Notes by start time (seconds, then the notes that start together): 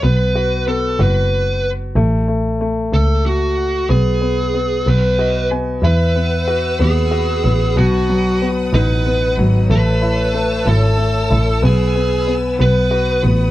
0.03 B1 B3 B4
0.35 F#4
0.67 B3 A4
0.99 F#1 F#4 B4
1.96 A1 A3
2.28 A3
2.61 A3
2.93 C#2 A3 A4
3.26 F#4
3.89 B1 B3 G#4
4.22 B3
4.54 B3
4.87 B1 B3 B4
5.19 F#4 D#5
5.51 B3 G#5
5.82 E2 E4 B4 F#5 E6
6.16 B3
6.48 F#4
6.79 D#2 B3 G#4
7.11 F#4
7.44 A1 B3
7.76 B1 B2 F#4 F#5 D#6
8.09 F#3
8.42 B3
8.73 A1 D#4 B4
9.06 B3
9.38 G#1 F#3
9.69 A1 A3 B4 C#5 A5 E6
10.02 E4
10.34 A3
10.66 G#1 E4 A4
10.98 A3
11.30 A1 E4
11.62 B1 B3 G#4 B4 G#5
11.96 B3
12.28 B3
12.58 B1 B3 B4 F#5 D#6
12.91 F#4
13.23 A1 B3